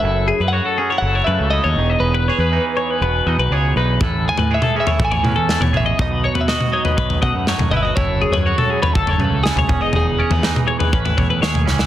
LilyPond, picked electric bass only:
\new Staff \with { instrumentName = "Picked electric bass" } { \clef bass \time 4/4 \key a \lydian \tempo 4 = 121 fis,,8. fis,8 r8. fis,,8 fis,16 cis,8 dis,16 e,,8 | e,,8. e,8 r8. e,,8 e,16 b,,16 cis,8 b,,8 | a,,8. a,8 r8. a,,8 a,16 e,8 e,16 a,,8 | b,,8. b,8 r8. b,,8 b,16 fis,8 fis,16 g,,8 |
fis,,8. fis,8 r8. fis,,8 fis,16 cis,8 cis,16 e,,8 | e,,8. e,8 r8. a,,8 e,8 dis,8 cis,8 | }